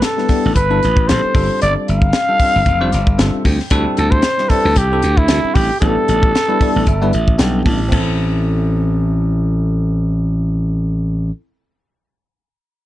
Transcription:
0.02 A4, snare, closed hi-hat
0.17 G3 B3 D4 E4 B4, snare
0.29 G3 B3 D4 E4 G4, kick, snare, open hi-hat
0.45 A1
0.55 G1 G4 B4, kick, closed hi-hat
0.70 G3 B3 D4 E4 A4
0.82 A1 E4 G4, snare, closed hi-hat
0.97 E4 A4, kick
1.07 A1 G3 B3 D4 E4 A4 C5, snare, closed hi-hat
1.25 muted slap bass stroke
1.34 G1 G3 C4 D4 F4 A4, kick, open hi-hat
1.62 G1 D5, closed hi-hat
1.88 G1 F5, closed hi-hat
2.02 kick
2.13 snare, closed hi-hat
2.28 G3 C4 D4 F4 A4
2.39 G3 C4 D4 F4 A4, kick, open hi-hat
2.56 G1
2.66 F1, kick, closed hi-hat
2.81 G3 C4 D4 F4 C5
2.91 G1 F4 C5 D5, snare, closed hi-hat
3.07 F4 A4, kick
3.18 G1 G3 C4 D4 F4 A4 E5, snare, closed hi-hat
3.35 muted slap bass stroke
3.45 D2 G5, kick, open hi-hat
3.60 snare
3.70 D2 G3 C4 D4 E4 A4, kick, closed hi-hat
3.97 D2 A4, closed hi-hat
4.11 C5, kick
4.22 snare, closed hi-hat
4.38 G3 C4 D4 E4 G4, snare
4.49 G3 C4 D4 E4 A4 B4, kick, snare, open hi-hat
4.65 D2
4.76 C2 G4, kick, closed hi-hat
4.92 G3 C4 D4 E4 A4
5.02 D2, closed hi-hat
5.17 E4, kick
5.28 D2 G3 C4 D4 E4 A4, snare, closed hi-hat
5.44 muted slap bass stroke
5.54 A1 G4, kick, open hi-hat
5.80 A1 G3 B3 D4 E4 A4, kick, closed hi-hat
6.08 A1, closed hi-hat
6.23 kick
6.35 snare, closed hi-hat
6.48 G3 B3 D4 E4 B4
6.61 G3 B3 D4 E4 A4 D5, kick, open hi-hat
6.76 A1
6.87 G1 E4 B4 E5, kick, closed hi-hat
7.01 G3 B3 D4 E4 B4
7.13 A1 E4 A4 E5, closed hi-hat
7.27 E4, kick
7.38 B1 G3 B3 D4 E4 A4 G5, snare, closed hi-hat
7.66 A1 A5, kick, open hi-hat
7.89 A1 C4 E4, kick, crash
7.93 A4

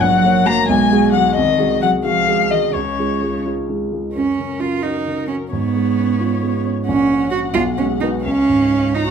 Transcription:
0.01 A#1 F#3 F#5
0.24 A#3 F#4 C#5
0.46 A#3 F#4 C#5 A#5
0.68 B1 G#3 G#5
0.91 G#3 F#4 G#4
1.12 F#3 G#3 F#4 G#4 F#5
1.35 C2 D#3 D#5
1.58 G#3 F#4 G#4
1.82 F#3 G#3 F#4 G#4 F#5
2.04 F3 G#3 F#4 G#4 F5
2.28 G#3 F#4 G#4
2.50 D#3 G#3 F#4 G#4 D#5
2.74 C#2 C#3 C#5
2.98 G#3 F4 G#4
3.23 G#3 F4 G#4
3.46 G#3 F4 G#4
3.69 G#3 F4 G#4
3.93 G#3 F4 G#4
4.14 F#2 C#4 A#4
4.39 C#3
4.60 F#3 F4
4.83 D#4 F#4
5.07 C#3
5.28 F#3 C#4
5.52 G#2 B3 C#5
5.76 G#3
5.98 C#4
6.20 F4
6.43 G#3
6.66 C#4
6.86 A#1 C#4 F#5
7.10 C#4
7.31 F#4 C#5
7.54 B1 F4
7.78 G#3 C#4
8.01 D#4 F#4 B4
8.24 C#2 C#4 F5
8.49 G#2
8.73 C#4
8.95 D#4 F4 A#5
9.07 F#4

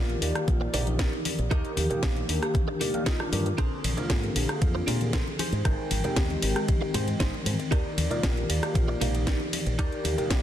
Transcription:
Already playing: A#1 D#3 A#3 A#4 D5
0.09 G4, closed hi-hat, high conga
0.21 D#2 D#3 A#3 G4 D5, open hi-hat
0.35 cross-stick, closed hi-hat
0.48 A#1 F4, kick, closed hi-hat, high conga
0.61 muted clean electric guitar stroke, muted conga
0.74 A#1 D#4 G4 A#4 D5, open hi-hat, low conga
0.86 D#4, closed hi-hat, high conga
0.99 D#4 G4 A#4 D5, kick, snare, closed hi-hat
1.13 D#4, muted conga
1.25 muted clean electric guitar stroke, open hi-hat, high conga
1.39 A#1, muted clean electric guitar stroke, closed hi-hat
1.50 D#2 D#3 A#3 D#4 G4 A#4 D#5, kick, cross-stick, closed hi-hat
1.65 closed hi-hat
1.77 D#2 G4, open hi-hat, high conga
1.90 D#3 A#3 G4, muted clean electric guitar stroke, muted fingered electric bass stroke, closed hi-hat, low conga
2.03 A#1, muted clean electric guitar stroke, kick, snare, closed hi-hat
2.16 closed hi-hat, high conga
2.28 D#2 D#3 A#3 D4 G4, open hi-hat
2.42 G4, cross-stick, closed hi-hat
2.54 kick, closed hi-hat, high conga
2.68 muted clean electric guitar stroke
2.81 D#4 G4 A#4 D5, open hi-hat, low conga
2.94 D#3 A#3 D4 A#4, closed hi-hat, high conga
3.06 D#4 F4 G4 A#4 D#5, kick, snare, closed hi-hat
3.20 D#3 A#3 D4 G4, cross-stick, muted conga
3.32 G2 D#3 A#3 D4 G4, muted clean electric guitar stroke, open hi-hat, high conga
3.46 muted clean electric guitar stroke, closed hi-hat
3.58 A#1 D3 A#3 C4 D4 G#4 A#4 C5, kick, cross-stick, closed hi-hat, ride
3.84 A#1, open hi-hat, ride, high conga
3.97 D3 A#3 C4 F4 A#4, muted clean electric guitar stroke, closed hi-hat, low conga
4.10 G#2 F4, muted clean electric guitar stroke, kick, snare, closed hi-hat, ride
4.23 G4, closed hi-hat, high conga
4.35 A#1 D3 A#3 C4 G4 G#4, open hi-hat, ride
4.49 cross-stick, closed hi-hat
4.61 F2 F4, kick, closed hi-hat, ride, high conga
4.75 muted clean electric guitar stroke, muted conga
4.87 A#2 D4 G4 G#4 A#4 C5, open hi-hat, ride, low conga
5.01 closed hi-hat, high conga
5.13 D4 G#4 A#4 C5, kick, snare, closed hi-hat, ride
5.28 muted conga
5.39 D#4 G4 G#4 C5, open hi-hat, ride, high conga
5.52 G#2, closed hi-hat
5.65 G#1 D#3 G#3 C4 G5, kick, cross-stick, closed hi-hat, ride
5.91 G#1, open hi-hat, ride, high conga
6.04 D#3 G#3 C4 G4 G5, muted clean electric guitar stroke, closed hi-hat, low conga
6.16 D#2, kick, snare, closed hi-hat, ride
6.30 G4, closed hi-hat, high conga
6.42 G#1 D#3 G#3 C4 G5, open hi-hat, ride
6.56 cross-stick, closed hi-hat
6.68 kick, closed hi-hat, ride, high conga
6.81 muted clean electric guitar stroke
6.94 G#2 D#4 G4 G#4 C5, open hi-hat, ride, low conga
7.07 closed hi-hat, high conga
7.20 G#1 D#4 G4 G#4 C5, kick, snare, closed hi-hat, ride
7.34 muted conga
7.45 G#2, muted clean electric guitar stroke, open hi-hat, ride, high conga
7.59 muted clean electric guitar stroke, closed hi-hat
7.71 D#2 D#3 A#3 D#4 G4 A#4 D5, kick, cross-stick, closed hi-hat, ride
7.97 D#2, open hi-hat, ride, high conga
8.10 D#3 A#3 F4 A#4 D5, muted clean electric guitar stroke, closed hi-hat, low conga
8.23 A#1 F4, muted clean electric guitar stroke, kick, snare, closed hi-hat, ride
8.36 G4, closed hi-hat, high conga
8.49 D#2 D#3 A#3 G4 D5, open hi-hat, ride
8.63 cross-stick, closed hi-hat
8.74 A#1 F4, kick, closed hi-hat, ride, high conga
8.88 muted clean electric guitar stroke, muted conga
9.01 A#1 D#4 G4 A#4 F5, open hi-hat, ride, low conga
9.14 D#4, closed hi-hat, high conga
9.27 D#4 G4 A#4 D5, kick, snare, closed hi-hat, ride
9.40 D#4, muted conga
9.53 muted clean electric guitar stroke, open hi-hat, ride, high conga
9.66 A#1, muted clean electric guitar stroke, closed hi-hat
9.78 D#3 A#3 D#4 G4 A#4 D5, kick, cross-stick, closed hi-hat, ride
9.92 closed hi-hat
10.04 D#2 G4, open hi-hat, ride, high conga
10.18 D#3 A#3 G4 D5, muted fingered electric bass stroke, muted clean electric guitar stroke, closed hi-hat, low conga
10.30 A#1, muted clean electric guitar stroke, kick, snare, closed hi-hat, ride

